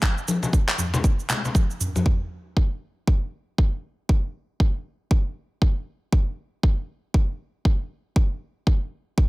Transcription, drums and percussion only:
0.02 kick, clap, high conga, shaker
0.18 shaker
0.28 high conga, shaker
0.43 high conga, low conga, shaker
0.53 kick, shaker
0.68 clap, shaker
0.78 mid tom, high conga, shaker
0.94 low conga, shaker
1.04 kick, shaker
1.19 shaker
1.30 clap, low conga, shaker
1.45 low conga, shaker
1.55 kick, high conga, shaker
1.70 shaker
1.81 mid tom, shaker
1.96 mid tom, high conga, shaker
2.06 kick
2.57 kick
3.07 kick
3.58 kick
4.09 kick
4.60 kick
5.11 kick
5.62 kick
6.13 kick
6.63 kick
7.14 kick
7.65 kick
8.16 kick
8.67 kick
9.18 kick

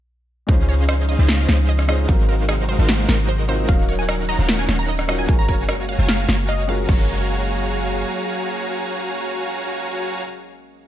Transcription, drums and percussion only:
0.49 kick, closed hi-hat
0.69 closed hi-hat
0.79 closed hi-hat
0.84 closed hi-hat
0.89 cross-stick, closed hi-hat
1.09 closed hi-hat
1.29 snare, closed hi-hat
1.49 snare, closed hi-hat
1.59 closed hi-hat
1.64 closed hi-hat
1.69 closed hi-hat
1.79 cross-stick
1.89 cross-stick, open hi-hat
2.09 kick, closed hi-hat
2.29 closed hi-hat
2.39 closed hi-hat
2.44 closed hi-hat
2.49 cross-stick, closed hi-hat
2.69 closed hi-hat
2.89 snare, closed hi-hat
3.09 snare, closed hi-hat
3.19 closed hi-hat
3.24 closed hi-hat
3.29 closed hi-hat
3.49 open hi-hat
3.69 kick, closed hi-hat
3.89 closed hi-hat
3.99 closed hi-hat
4.04 closed hi-hat
4.09 cross-stick, closed hi-hat
4.29 closed hi-hat
4.49 snare, closed hi-hat
4.69 snare, closed hi-hat
4.79 closed hi-hat
4.84 closed hi-hat
4.89 closed hi-hat
4.99 cross-stick
5.09 cross-stick, open hi-hat
5.29 kick, closed hi-hat
5.49 kick, closed hi-hat
5.59 closed hi-hat
5.64 closed hi-hat
5.69 cross-stick, closed hi-hat
5.89 closed hi-hat
6.09 snare, closed hi-hat
6.29 snare, closed hi-hat
6.39 closed hi-hat
6.44 closed hi-hat
6.49 closed hi-hat
6.69 open hi-hat
6.89 kick, crash

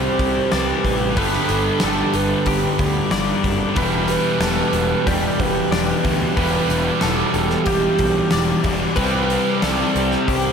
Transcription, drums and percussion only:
0.19 kick, open hi-hat
0.52 snare, open hi-hat
0.85 kick, open hi-hat
1.17 kick, open hi-hat
1.33 snare
1.49 open hi-hat
1.80 snare, open hi-hat
2.13 open hi-hat
2.46 kick, open hi-hat
2.79 kick, open hi-hat
3.11 snare, open hi-hat
3.44 kick, open hi-hat
3.76 kick, open hi-hat
4.08 open hi-hat
4.41 snare, open hi-hat
4.73 open hi-hat
5.07 kick, open hi-hat
5.40 kick, open hi-hat
5.72 snare, open hi-hat
6.05 kick, open hi-hat
6.37 kick, open hi-hat
6.70 open hi-hat
7.01 snare, open hi-hat
7.34 open hi-hat
7.50 snare
7.66 kick, open hi-hat
7.99 kick, open hi-hat
8.31 snare, open hi-hat
8.64 kick, open hi-hat
8.96 kick, open hi-hat
9.30 open hi-hat
9.62 snare, open hi-hat
9.96 open hi-hat
10.11 snare
10.28 kick, open hi-hat

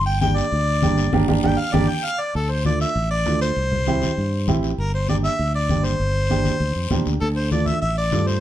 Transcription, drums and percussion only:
0.21 high conga, short guiro
0.37 short guiro
0.52 high conga, long guiro
0.82 high conga, short guiro
0.98 short guiro
1.13 high conga, long guiro
1.28 high conga, long guiro
1.43 high conga, long guiro
1.74 high conga, long guiro
2.35 long guiro
2.65 high conga, short guiro
2.80 short guiro
2.95 long guiro
3.26 high conga, short guiro
3.41 short guiro
3.56 long guiro
3.72 low conga
3.86 high conga, short guiro
4.02 high conga, short guiro
4.17 long guiro
4.48 high conga, low conga, short guiro
4.63 short guiro
4.78 long guiro
5.09 high conga, short guiro
5.24 short guiro
5.39 long guiro
5.69 high conga, short guiro
5.84 short guiro
6.00 long guiro
6.30 high conga, short guiro
6.45 high conga, short guiro
6.60 long guiro
6.91 high conga, low conga, short guiro
7.06 short guiro
7.20 long guiro
7.52 high conga, short guiro
7.66 high conga, short guiro
7.82 long guiro
8.12 high conga, short guiro
8.27 short guiro

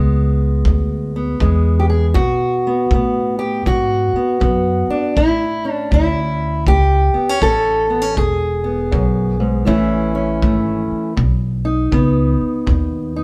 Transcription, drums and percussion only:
0.65 kick
1.40 kick
2.15 kick
2.91 kick
3.66 kick
4.41 kick
5.17 kick
5.92 kick
6.67 kick
7.42 kick
8.17 kick
8.92 kick
9.68 kick
10.42 kick
11.17 kick
11.92 kick
12.67 kick

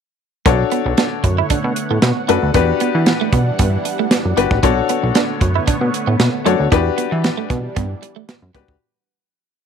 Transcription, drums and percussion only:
0.46 kick, closed hi-hat
0.71 closed hi-hat
0.98 snare, closed hi-hat
1.24 kick, closed hi-hat
1.50 kick, closed hi-hat
1.76 closed hi-hat
2.02 snare, closed hi-hat
2.29 closed hi-hat
2.54 kick, closed hi-hat
2.80 closed hi-hat
3.06 snare, closed hi-hat
3.32 kick, closed hi-hat
3.59 kick, closed hi-hat
3.85 closed hi-hat
4.11 snare, closed hi-hat
4.37 closed hi-hat
4.51 kick
4.63 kick, closed hi-hat
4.89 closed hi-hat
5.15 snare, closed hi-hat
5.41 kick, closed hi-hat
5.68 kick, closed hi-hat
5.94 closed hi-hat
6.20 snare, closed hi-hat
6.46 closed hi-hat
6.72 kick, closed hi-hat
6.98 closed hi-hat
7.24 snare, closed hi-hat
7.50 kick, closed hi-hat
7.76 kick, closed hi-hat
8.03 closed hi-hat
8.29 snare, closed hi-hat
8.55 kick, closed hi-hat
8.68 kick

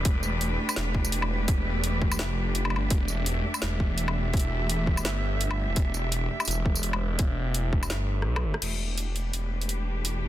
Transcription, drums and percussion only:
0.05 kick, closed hi-hat
0.23 tambourine
0.41 closed hi-hat
0.69 tambourine, low woodblock
0.76 snare, closed hi-hat
0.94 kick
1.05 tambourine
1.12 closed hi-hat
1.22 low woodblock
1.48 kick, closed hi-hat
1.84 closed hi-hat
2.02 kick
2.12 tambourine, low woodblock
2.19 snare, closed hi-hat
2.55 closed hi-hat
2.65 low woodblock
2.70 low woodblock
2.76 low woodblock
2.90 kick, closed hi-hat
3.08 tambourine
3.26 closed hi-hat
3.54 tambourine, low woodblock
3.62 snare, closed hi-hat
3.80 kick
3.98 closed hi-hat
4.08 low woodblock
4.33 kick, closed hi-hat
4.37 closed hi-hat
4.39 closed hi-hat
4.70 closed hi-hat
4.87 kick
4.97 tambourine, low woodblock
5.05 snare, closed hi-hat
5.41 closed hi-hat
5.51 low woodblock
5.76 kick, closed hi-hat
5.94 tambourine
6.12 closed hi-hat
6.40 tambourine, low woodblock
6.45 closed hi-hat, tambourine
6.51 tambourine
6.66 kick
6.75 tambourine
6.83 closed hi-hat
6.93 low woodblock
7.19 kick, closed hi-hat
7.54 closed hi-hat
7.73 kick
7.83 tambourine, low woodblock
7.90 snare, closed hi-hat
8.22 cross-stick
8.36 cross-stick, low woodblock
8.54 cross-stick
8.62 closed hi-hat, crash
8.98 closed hi-hat
9.16 closed hi-hat
9.33 closed hi-hat
9.61 closed hi-hat
9.69 closed hi-hat
10.05 closed hi-hat

